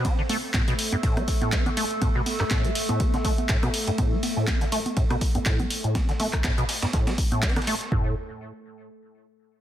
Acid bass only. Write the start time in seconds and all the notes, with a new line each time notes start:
0.05 C4
0.19 D3
0.30 A3
0.54 A2
0.68 B2
0.92 G2
1.03 A2
1.17 A3
1.42 A2
1.52 C4
1.66 D3
1.77 A3
2.02 A2
2.15 B2
2.40 G2
2.51 A2
2.65 A3
2.89 A2
3.00 C4
3.14 D3
3.25 A3
3.49 A2
3.63 B2
3.87 G2
3.98 A2
4.12 A3
4.37 A2
4.48 C4
4.61 D3
4.72 A3
4.97 A2
5.10 B2
5.35 G2
5.46 A2
5.60 A3
5.84 A2
5.95 C4
6.09 D3
6.20 A3
6.44 A2
6.58 B2
6.82 G2
6.93 A2
7.07 A3
7.32 A2
7.43 C4
7.56 D3
7.67 A3
7.92 A2